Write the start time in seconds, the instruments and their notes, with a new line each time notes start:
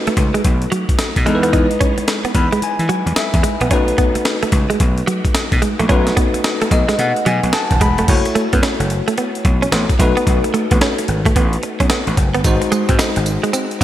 Already playing: tine electric piano A3 D#4 F#4 B4
0.07 clean electric guitar A3, muted slap bass stroke, closed hi-hat
0.17 slap bass C#2, muted clean electric guitar stroke, kick, closed hi-hat
0.34 clean electric guitar G#3, closed hi-hat
0.44 slap bass B1, kick, closed hi-hat
0.62 closed hi-hat
0.72 clean electric guitar F#3, closed hi-hat
0.89 kick, closed hi-hat
0.99 muted clean electric guitar stroke, snare, closed hi-hat
1.16 slap bass B2, kick, closed hi-hat
1.25 slap bass E2, tine electric piano G#3 D#4 E4 A4, clean electric guitar G#3, closed hi-hat
1.35 tine electric piano B4
1.43 clean electric guitar B3, closed hi-hat
1.53 clean electric guitar D#4, kick, closed hi-hat
1.71 closed hi-hat
1.81 clean electric guitar C#4, kick, closed hi-hat
1.98 muted slap bass stroke, muted clean electric guitar stroke, closed hi-hat
2.08 snare, closed hi-hat
2.24 clean electric guitar B3, muted slap bass stroke, closed hi-hat
2.35 slap bass E2, tine electric piano B5, muted clean electric guitar stroke, kick, closed hi-hat
2.52 clean electric guitar G#3, closed hi-hat
2.62 tine electric piano G#5, muted slap bass stroke, closed hi-hat
2.79 slap bass E3, closed hi-hat
2.89 clean electric guitar F#3, closed hi-hat
3.06 slap bass E2, closed hi-hat
3.16 tine electric piano E5, muted clean electric guitar stroke, muted slap bass stroke, snare, closed hi-hat
3.34 slap bass E2, kick, closed hi-hat
3.43 clean electric guitar G#3, closed hi-hat
3.60 slap bass A#1, clean electric guitar B3, closed hi-hat
3.71 slap bass B1, tine electric piano A3 D#4 F#4 B4, clean electric guitar C#4, kick, closed hi-hat
3.88 closed hi-hat
3.98 clean electric guitar B3, kick, closed hi-hat
4.15 muted slap bass stroke, muted clean electric guitar stroke, closed hi-hat
4.25 snare, closed hi-hat
4.43 clean electric guitar A3, muted slap bass stroke, closed hi-hat
4.52 slap bass C#2, muted clean electric guitar stroke, kick, closed hi-hat
4.70 clean electric guitar G#3, closed hi-hat
4.80 slap bass B1, kick, closed hi-hat
4.98 closed hi-hat
5.07 clean electric guitar F#3, closed hi-hat
5.25 kick, closed hi-hat
5.35 muted clean electric guitar stroke, snare, closed hi-hat
5.52 slap bass B2, kick, closed hi-hat
5.62 clean electric guitar G#3, closed hi-hat
5.79 slap bass A#1, clean electric guitar A3, closed hi-hat
5.89 slap bass B1, tine electric piano A3 D#4 F#4 B4, clean electric guitar C#4, kick, closed hi-hat
6.07 snare, closed hi-hat
6.17 clean electric guitar B3, kick, closed hi-hat
6.34 muted slap bass stroke, muted clean electric guitar stroke, closed hi-hat
6.44 snare, closed hi-hat
6.61 clean electric guitar A3, muted slap bass stroke, closed hi-hat
6.71 slap bass B1, tine electric piano D#5, muted clean electric guitar stroke, kick, closed hi-hat
6.88 clean electric guitar G#3, snare, closed hi-hat
6.99 slap bass B2, tine electric piano F#5, closed hi-hat
7.16 closed hi-hat
7.26 slap bass B2, clean electric guitar F#3, tine electric piano G#5, closed hi-hat
7.43 slap bass B1, closed hi-hat
7.53 tine electric piano A5, muted clean electric guitar stroke, snare, closed hi-hat
7.71 slap bass D#1, kick, closed hi-hat
7.81 slap bass E1, clean electric guitar G#3, tine electric piano B5, kick, closed hi-hat
7.98 slap bass F1, clean electric guitar A3, closed hi-hat
8.08 slap bass F#1, tine electric piano A3 E4 F#4 C#5, kick, closed hi-hat, crash
8.25 muted clean electric guitar stroke, closed hi-hat
8.35 clean electric guitar A3, muted slap bass stroke, closed hi-hat
8.53 slap bass F#2, clean electric guitar B3, kick, closed hi-hat
8.63 clean electric guitar C#4, snare, closed hi-hat
8.80 slap bass F#1, muted clean electric guitar stroke, closed hi-hat
8.90 closed hi-hat
9.08 clean electric guitar A3, closed hi-hat
9.18 clean electric guitar B3, closed hi-hat
9.35 closed hi-hat
9.45 slap bass B1, muted clean electric guitar stroke, kick, closed hi-hat
9.62 clean electric guitar C#4, closed hi-hat
9.72 slap bass A1, clean electric guitar B3, snare, closed hi-hat
9.89 kick, closed hi-hat
9.99 slap bass B1, tine electric piano A3 D#4 F#4 B4, muted clean electric guitar stroke, kick, closed hi-hat
10.17 clean electric guitar B3, closed hi-hat
10.27 slap bass B1, kick, closed hi-hat
10.44 muted clean electric guitar stroke, closed hi-hat
10.54 clean electric guitar A3, closed hi-hat
10.71 slap bass A1, clean electric guitar B3, kick, closed hi-hat
10.81 clean electric guitar C#4, snare, closed hi-hat
10.98 muted clean electric guitar stroke, closed hi-hat
11.08 slap bass G#1, closed hi-hat
11.25 clean electric guitar A3, kick, closed hi-hat
11.36 slap bass A1, clean electric guitar B3, kick, closed hi-hat
11.53 closed hi-hat
11.63 muted clean electric guitar stroke, closed hi-hat
11.80 slap bass B1, clean electric guitar C#4, kick, closed hi-hat
11.90 clean electric guitar B3, snare, closed hi-hat
12.07 slap bass A1, closed hi-hat
12.17 slap bass F#1, muted clean electric guitar stroke, kick, closed hi-hat
12.34 slap bass G1, clean electric guitar B3, closed hi-hat
12.44 slap bass G#1, tine electric piano G#3 D#4 F#4 C5, kick, closed hi-hat, tambourine
12.62 muted clean electric guitar stroke, closed hi-hat
12.72 clean electric guitar G#3, muted slap bass stroke, closed hi-hat, tambourine
12.89 slap bass G#2, clean electric guitar C4, kick, closed hi-hat
12.99 clean electric guitar D#4, muted slap bass stroke, snare, closed hi-hat, tambourine
13.16 slap bass G#1, muted clean electric guitar stroke, closed hi-hat
13.26 closed hi-hat, tambourine
13.43 clean electric guitar G#3, closed hi-hat
13.53 clean electric guitar C4, closed hi-hat, tambourine
13.71 closed hi-hat
13.81 muted clean electric guitar stroke